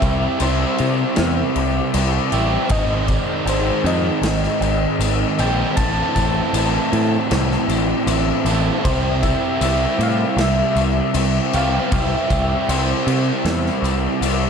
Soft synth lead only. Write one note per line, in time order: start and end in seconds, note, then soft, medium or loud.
0.00 0.43 E5 loud
0.41 2.33 C5 medium
2.71 3.09 D#5 loud
3.07 3.51 D5 medium
3.49 3.88 C5 medium
3.87 5.42 D#5 loud
5.40 5.78 G5 loud
5.77 6.14 A5 loud
6.15 7.65 A5 loud
8.85 9.24 C5 loud
9.23 9.61 E5 medium
9.63 10.04 E5 loud
10.03 10.42 F5 loud
10.41 11.57 E5 loud
11.56 11.92 F5 medium
11.92 12.72 E5 loud
12.70 14.50 C5 medium